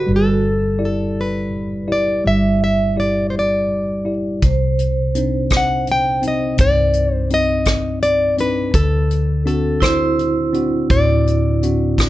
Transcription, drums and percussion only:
4.42 kick medium
4.42 closed hi-hat medium
4.79 closed hi-hat soft
5.15 closed hi-hat soft
5.50 kick medium
5.50 cross-stick medium
5.50 closed hi-hat medium
5.87 closed hi-hat soft
6.23 closed hi-hat soft
6.58 kick medium
6.58 closed hi-hat medium
6.93 closed hi-hat medium
7.30 closed hi-hat soft
7.65 kick medium
7.65 cross-stick medium
7.65 closed hi-hat medium
8.02 closed hi-hat soft
8.38 closed hi-hat soft
8.74 kick medium
8.74 closed hi-hat medium
9.11 closed hi-hat soft
9.47 closed hi-hat soft
9.82 kick medium
9.82 cross-stick medium
9.82 closed hi-hat medium
10.19 closed hi-hat soft
10.54 closed hi-hat soft
10.90 kick medium
10.90 closed hi-hat medium
11.27 closed hi-hat soft
11.63 closed hi-hat soft
11.98 kick medium
11.98 cross-stick medium
11.98 closed hi-hat medium

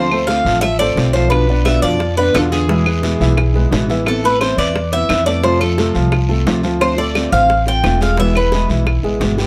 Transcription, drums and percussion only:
0.11 high bongo soft
0.11 claves medium
0.28 high bongo medium
0.28 short guiro medium
0.46 short guiro medium
0.62 high bongo medium
0.62 long guiro medium
0.62 claves medium
0.80 high bongo soft
0.97 high bongo soft
0.97 low bongo medium
0.97 short guiro medium
1.14 high bongo soft
1.14 short guiro medium
1.32 high bongo medium
1.32 long guiro medium
1.32 claves medium
1.49 high bongo soft
1.66 high bongo medium
1.66 short guiro medium
1.66 claves medium
1.83 short guiro medium
2.00 high bongo medium
2.00 long guiro medium
2.17 high bongo soft
2.35 high bongo soft
2.35 low bongo medium
2.35 short guiro medium
2.35 claves medium
2.52 high bongo soft
2.52 short guiro medium
2.69 high bongo medium
2.69 long guiro medium
2.86 high bongo soft
2.86 claves medium
3.03 high bongo medium
3.03 short guiro medium
3.21 short guiro medium
3.37 high bongo medium
3.37 claves medium
3.55 high bongo soft
3.72 high bongo soft
3.72 low bongo medium
3.72 short guiro medium
3.90 high bongo soft
3.90 short guiro medium
4.06 high bongo medium
4.06 long guiro medium
4.06 claves medium
4.24 high bongo soft
4.41 high bongo medium
4.41 short guiro medium
4.41 claves medium
4.59 short guiro medium
4.76 high bongo medium
4.76 long guiro medium
4.93 high bongo soft
5.09 high bongo soft
5.09 low bongo medium
5.09 short guiro medium
5.09 claves medium
5.27 high bongo soft
5.27 short guiro medium
5.44 high bongo medium
5.44 long guiro medium
5.61 high bongo soft
5.61 claves medium
5.78 high bongo medium
5.78 short guiro medium
5.95 short guiro medium
6.12 high bongo medium
6.12 long guiro medium
6.12 claves medium
6.30 high bongo soft
6.47 high bongo soft
6.47 low bongo medium
6.47 short guiro medium
6.63 high bongo soft
6.63 short guiro medium
6.81 high bongo medium
6.81 long guiro medium
6.81 claves medium
6.98 high bongo soft
7.15 high bongo medium
7.15 short guiro medium
7.15 claves medium
7.33 short guiro medium
7.49 high bongo medium
7.49 long guiro medium
7.66 high bongo soft
7.84 high bongo soft
7.84 low bongo medium
7.84 short guiro medium
7.84 claves medium
8.01 high bongo soft
8.01 short guiro medium
8.17 high bongo medium
8.17 long guiro medium
8.35 high bongo soft
8.35 claves medium
8.52 high bongo medium
8.52 short guiro medium
8.70 short guiro medium
8.87 high bongo medium
8.87 long guiro medium
8.87 claves medium
9.04 high bongo soft
9.21 high bongo soft
9.21 low bongo medium
9.21 short guiro medium
9.38 high bongo soft
9.38 short guiro medium

